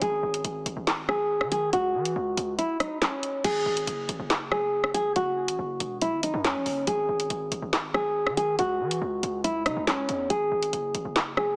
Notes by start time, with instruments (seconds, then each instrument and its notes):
0.02 808-style bass G#1, nylon-string guitar G#4, closed hi-hat
0.23 808-style bass G#1
0.34 closed hi-hat
0.44 808-style bass G#1, closed hi-hat
0.66 808-style bass G#1, closed hi-hat
0.77 808-style bass G#1
0.87 snare, clap, closed hi-hat
1.09 nylon-string guitar G#4, cross-stick
1.41 808-style bass D#3, cross-stick
1.52 nylon-string guitar G#4, closed hi-hat
1.73 808-style bass C#2, nylon-string guitar F#4, closed hi-hat
1.94 808-style bass E3
2.05 closed hi-hat
2.16 808-style bass C#2
2.37 808-style bass C#2, closed hi-hat
2.58 nylon-string guitar E4, closed hi-hat
2.80 nylon-string guitar D#4, cross-stick, closed hi-hat
3.02 nylon-string guitar C#4, snare, clap, closed hi-hat
3.23 closed hi-hat
3.44 808-style bass G#1, nylon-string guitar G#4, closed hi-hat, crash
3.66 808-style bass G#1
3.77 closed hi-hat
3.87 808-style bass F#1, closed hi-hat
4.09 808-style bass G#1, closed hi-hat
4.19 808-style bass F#1
4.30 snare, clap, closed hi-hat
4.51 nylon-string guitar G#4, cross-stick
4.84 cross-stick
4.94 808-style bass A1, nylon-string guitar G#4, closed hi-hat
5.05 808-style bass F#1
5.16 808-style bass F#1, nylon-string guitar F#4, closed hi-hat
5.48 808-style bass A1, closed hi-hat
5.59 808-style bass F#1
5.80 808-style bass E1, closed hi-hat
6.02 nylon-string guitar E4, closed hi-hat
6.12 808-style bass G#1
6.23 nylon-string guitar D#4, closed hi-hat
6.34 808-style bass F#2
6.44 nylon-string guitar C#4, snare, clap, closed hi-hat
6.55 808-style bass G#1
6.66 808-style bass F#1, open hi-hat
6.87 808-style bass G#1, nylon-string guitar G#4, closed hi-hat
7.09 808-style bass G#1
7.20 closed hi-hat
7.30 808-style bass G#1, closed hi-hat
7.52 808-style bass G#1, closed hi-hat
7.62 808-style bass G#1
7.73 snare, clap, closed hi-hat
7.94 nylon-string guitar G#4, cross-stick
8.27 808-style bass D#3, cross-stick
8.37 nylon-string guitar G#4, closed hi-hat
8.59 808-style bass C#2, nylon-string guitar F#4, closed hi-hat
8.80 808-style bass E3
8.91 closed hi-hat
9.02 808-style bass C#2
9.23 808-style bass C#2, closed hi-hat
9.44 nylon-string guitar E4, closed hi-hat
9.66 808-style bass C#3, nylon-string guitar D#4, cross-stick, closed hi-hat
9.77 808-style bass C#2
9.87 nylon-string guitar C#4, snare, clap, closed hi-hat
10.09 808-style bass E2, closed hi-hat
10.30 808-style bass G#1, nylon-string guitar G#4, closed hi-hat
10.52 808-style bass G#1
10.63 closed hi-hat
10.73 808-style bass F#1, closed hi-hat
10.94 808-style bass G#1, closed hi-hat
11.05 808-style bass F#1
11.16 snare, clap, closed hi-hat
11.37 nylon-string guitar G#4, cross-stick